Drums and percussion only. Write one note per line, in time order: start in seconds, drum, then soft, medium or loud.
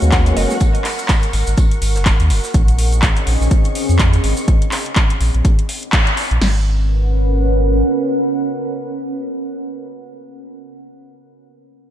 0.02 closed hi-hat soft
0.02 shaker medium
0.12 kick loud
0.12 snare loud
0.12 clap loud
0.12 closed hi-hat medium
0.12 tambourine medium
0.12 shaker medium
0.26 closed hi-hat medium
0.26 closed hi-hat soft
0.26 shaker soft
0.37 open hi-hat medium
0.37 tambourine medium
0.37 high conga medium
0.50 snare soft
0.50 shaker medium
0.60 kick loud
0.60 closed hi-hat medium
0.60 tambourine medium
0.60 shaker medium
0.75 closed hi-hat medium
0.75 shaker soft
0.84 clap medium
0.84 open hi-hat loud
0.84 open hi-hat medium
0.98 closed hi-hat soft
0.98 shaker medium
1.08 kick loud
1.08 snare loud
1.08 clap loud
1.08 closed hi-hat medium
1.08 tambourine medium
1.08 shaker medium
1.23 closed hi-hat medium
1.23 shaker soft
1.33 open hi-hat medium
1.33 tambourine medium
1.47 closed hi-hat soft
1.47 shaker medium
1.57 kick loud
1.57 closed hi-hat medium
1.57 tambourine medium
1.57 shaker medium
1.71 closed hi-hat medium
1.71 shaker soft
1.82 open hi-hat loud
1.82 tambourine medium
1.95 snare medium
1.95 closed hi-hat soft
1.95 shaker medium
2.05 kick loud
2.05 snare loud
2.05 clap loud
2.05 closed hi-hat medium
2.05 tambourine loud
2.05 shaker medium
2.20 closed hi-hat medium
2.20 shaker soft
2.30 open hi-hat medium
2.30 tambourine medium
2.44 snare soft
2.44 shaker medium
2.54 kick loud
2.54 closed hi-hat medium
2.54 shaker medium
2.68 closed hi-hat medium
2.68 shaker soft
2.79 open hi-hat loud
2.92 closed hi-hat soft
2.92 shaker medium
3.02 kick loud
3.02 clap loud
3.02 closed hi-hat medium
3.02 shaker medium
3.16 closed hi-hat medium
3.16 shaker soft
3.27 open hi-hat medium
3.42 shaker medium
3.51 kick loud
3.51 closed hi-hat medium
3.51 shaker medium
3.65 closed hi-hat medium
3.65 shaker soft
3.75 open hi-hat loud
3.89 closed hi-hat soft
3.89 shaker medium
3.99 kick loud
3.99 clap loud
3.99 closed hi-hat medium
3.99 shaker medium
4.13 closed hi-hat medium
4.13 shaker soft
4.24 open hi-hat medium
4.37 shaker medium
4.48 kick loud
4.48 closed hi-hat medium
4.62 closed hi-hat medium
4.72 clap medium
4.72 open hi-hat loud
4.86 closed hi-hat soft
4.96 kick loud
4.96 clap loud
4.96 closed hi-hat medium
5.10 closed hi-hat medium
5.21 open hi-hat medium
5.34 closed hi-hat soft
5.45 kick loud
5.45 closed hi-hat medium
5.59 closed hi-hat medium
5.69 open hi-hat loud
5.83 closed hi-hat soft
5.93 kick loud
5.93 clap loud
5.93 closed hi-hat medium
6.07 closed hi-hat medium
6.17 open hi-hat medium
6.31 closed hi-hat soft
6.42 snare loud
6.42 crash medium